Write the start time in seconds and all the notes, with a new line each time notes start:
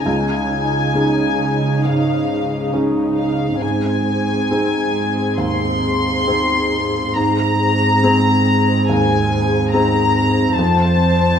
0.04 C#2 C#3 D#4 G#4 G#5
0.95 C#4 D#4 G#4
1.85 G#2 F5
2.73 C#4 D#4 G#4
3.17 F5
3.61 G#2 C4 G#4 G#5
4.51 C4 D#4 G#4
5.38 D#2 C6
6.27 C4 D#4 G#4
7.14 G#2 C4 G#4 A#5
8.03 C4 D#4 G#4
8.88 D#2 G#5
9.71 C4 D#4 G#4 A#5
10.55 F2 C4 C5 A5
11.01 C4